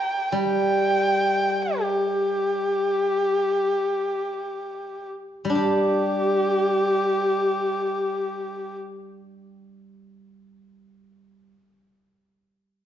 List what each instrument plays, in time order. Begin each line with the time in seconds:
Already playing: erhu G5
0.32 guzheng G3
0.37 erhu G5
1.81 erhu G4
5.45 guzheng G3
5.50 guzheng D4
5.55 guzheng G4, erhu G4